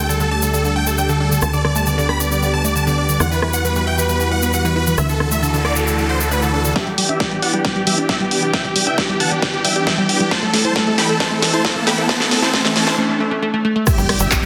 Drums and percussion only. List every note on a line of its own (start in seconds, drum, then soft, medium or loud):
0.10 shaker medium
0.20 shaker soft
0.42 shaker medium
0.54 shaker medium
0.65 shaker soft
0.87 shaker medium
0.98 shaker medium
1.09 shaker soft
1.32 shaker medium
1.41 cross-stick medium
1.41 shaker medium
1.53 shaker soft
1.65 cross-stick medium
1.76 shaker medium
1.86 shaker medium
1.99 shaker soft
2.09 cross-stick medium
2.20 shaker medium
2.31 shaker medium
2.43 shaker soft
2.65 shaker medium
2.76 shaker medium
2.87 shaker soft
3.09 shaker medium
3.20 cross-stick medium
3.20 shaker medium
3.32 shaker soft
3.42 cross-stick medium
3.53 shaker medium
3.65 shaker medium
3.75 shaker soft
3.98 shaker medium
4.09 shaker medium
4.20 shaker soft
4.42 shaker medium
4.53 shaker medium
4.65 shaker soft
4.87 shaker medium
4.98 cross-stick medium
4.98 shaker medium
5.09 shaker soft
5.20 cross-stick medium
5.31 shaker medium
5.43 shaker medium
5.54 shaker soft
5.65 cross-stick medium
5.76 shaker medium
5.87 shaker medium
5.98 shaker soft
6.20 shaker medium
6.31 shaker medium
6.42 shaker soft
6.65 shaker medium
6.76 kick loud
6.76 snare soft
6.76 closed hi-hat medium
6.87 closed hi-hat soft
6.98 open hi-hat loud
7.09 closed hi-hat medium
7.20 kick loud
7.20 snare soft
7.20 closed hi-hat medium
7.31 closed hi-hat soft
7.42 open hi-hat medium
7.54 closed hi-hat medium
7.65 kick loud
7.65 snare soft
7.65 closed hi-hat soft
7.76 closed hi-hat soft
7.87 open hi-hat loud
7.98 closed hi-hat medium
8.09 kick loud
8.09 snare medium
8.09 closed hi-hat medium
8.20 closed hi-hat soft
8.31 open hi-hat medium
8.42 closed hi-hat medium
8.53 kick loud
8.53 snare medium
8.53 closed hi-hat soft
8.65 closed hi-hat soft
8.76 open hi-hat loud
8.87 closed hi-hat soft
8.98 kick loud
8.98 snare medium
8.98 closed hi-hat soft
9.09 closed hi-hat soft
9.20 open hi-hat medium
9.31 closed hi-hat medium
9.42 kick loud
9.42 snare medium
9.42 closed hi-hat soft
9.54 closed hi-hat soft
9.65 open hi-hat loud
9.76 closed hi-hat medium
9.87 kick loud
9.87 snare medium
9.87 closed hi-hat medium
9.98 closed hi-hat soft
10.09 open hi-hat medium
10.20 closed hi-hat medium
10.31 kick loud
10.31 snare medium
10.31 closed hi-hat soft
10.42 closed hi-hat soft
10.54 snare medium
10.54 open hi-hat loud
10.65 closed hi-hat soft
10.76 kick loud
10.76 snare medium
10.76 closed hi-hat soft
10.87 closed hi-hat soft
10.98 snare medium
10.98 open hi-hat medium
11.09 closed hi-hat soft
11.20 kick loud
11.20 snare medium
11.20 closed hi-hat soft
11.31 closed hi-hat soft
11.42 snare medium
11.42 open hi-hat loud
11.54 closed hi-hat medium
11.65 kick loud
11.65 snare medium
11.65 closed hi-hat medium
11.76 closed hi-hat soft
11.87 snare medium
11.87 open hi-hat loud
11.98 closed hi-hat medium
12.09 kick loud
12.09 snare medium
12.09 closed hi-hat soft
12.20 snare medium
12.20 closed hi-hat soft
12.31 snare medium
12.31 open hi-hat loud
12.42 snare medium
12.42 closed hi-hat medium
12.54 kick loud
12.54 snare medium
12.54 closed hi-hat soft
12.65 snare medium
12.65 closed hi-hat soft
12.76 snare loud
12.76 open hi-hat medium
12.87 snare medium
12.87 closed hi-hat medium
13.87 kick loud
13.87 cross-stick medium
13.87 closed hi-hat medium
13.87 crash loud
13.87 shaker medium
13.98 closed hi-hat soft
13.98 shaker soft
14.09 cross-stick medium
14.09 open hi-hat loud
14.20 closed hi-hat medium
14.20 shaker medium
14.31 kick loud
14.31 clap loud
14.31 closed hi-hat medium
14.31 shaker medium
14.42 closed hi-hat soft